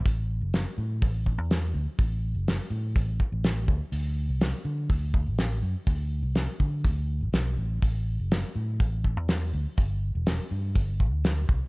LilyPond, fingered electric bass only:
\new Staff \with { instrumentName = "Fingered electric bass" } { \clef bass \time 4/4 \key a \dorian \tempo 4 = 123 a,,8. fis,,8 r16 a,8 a,,8. e,8. d,16 r16 | a,,8. fis,,8 r16 a,8 a,,8 r16 a,,8. d,16 r16 | d,8. c,8 r16 d8 d,8. a,,8. fis,16 r16 | d,8. c,8 r16 d8 d,8. a,,16 b,,8 a,,8 |
a,,8. fis,,8 r16 a,8 a,,8. e,8. d,16 r16 | g,,8. e,,8 r16 g,8 g,,8. d,8. c,16 r16 | }